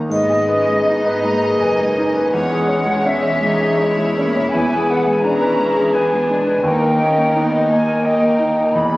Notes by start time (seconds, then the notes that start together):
Already playing: A#3 D#4 A#4
0.09 G#1 G#2 G#3 B3 D#5, triangle
0.29 G#4
0.48 C#4 B4
0.68 G#3
0.86 B3 D#4
1.07 B4
1.22 G#3 A#3 A#5
1.43 G#4
1.59 F#1 F#2 D#4 B4 G#5
1.80 G#3
1.98 C#4 D#4
2.16 B4
2.32 E1 E2 G#3 C#5 F#5
2.50 G#4
2.68 C#5
2.86 G#3
3.06 C#4 E5
3.23 C#5
3.41 G#3 D#4
3.61 G#4
3.78 G#3 E4 C#5 E5
3.98 G#3
4.16 A#3 C#4
4.36 C#5
4.50 E1 E2 B3 B4 G#5
4.55 E2
4.75 G#4
4.90 B4 F#5
5.06 G#3 G#5
5.22 C#4 D4 A#5
5.27 E4 G#4
5.42 B4
5.59 G#3 G#4
5.76 G#4
5.93 B3 D4 B4 G#5
6.13 G#3
6.29 G#3 D4
6.46 B4
6.63 D#2 D#3 A#3 D#4 G5
6.67 A#4
6.81 A#4
6.99 C#4 D#5
7.17 A#3
7.35 B3 D#4
7.52 D#5
7.69 A#3 G#5
7.88 A#4
8.02 A#3 D#4 D#5 G5
8.06 A#4
8.22 A#3
8.38 D#4
8.57 D#5
8.72 E2 B5
8.76 E1
8.92 G#4